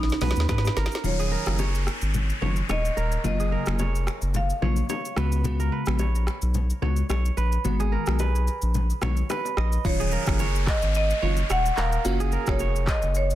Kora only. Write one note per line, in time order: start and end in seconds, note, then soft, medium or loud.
0.00 0.36 G#4 medium
0.00 0.21 B4 medium
0.22 0.49 B4 medium
0.49 0.83 B4 medium
0.77 1.31 A#4 medium
1.19 2.56 G#4 medium
1.32 2.59 A#4 medium
1.59 2.41 C#5 medium
2.42 2.69 C#5 medium
2.69 3.79 C#5 medium
2.97 3.52 A#4 medium
3.40 4.76 G#4 medium
3.52 4.79 A#4 medium
3.80 4.62 C#5 medium
4.62 4.89 C#5 medium
4.90 5.99 C#5 medium
5.17 5.66 B4 medium
5.60 5.78 A#4 medium
5.72 6.95 B4 medium
6.00 6.82 C#5 medium
6.82 7.09 C#5 medium
7.09 8.24 C#5 medium
7.37 7.98 B4 medium
7.80 9.16 G#4 medium
7.92 8.26 A#4 medium
8.20 9.29 B4 medium
9.02 10.17 C#5 medium
9.30 10.18 B4 medium
9.57 10.64 D#5 medium
10.00 11.36 G#4 medium
10.12 11.40 A#4 medium
10.40 11.22 C#5 medium
11.22 11.49 C#5 medium
11.50 12.60 C#5 medium
11.77 12.32 A#4 medium
12.20 13.35 G#4 medium
12.33 13.35 A#4 medium
12.60 13.35 C#5 medium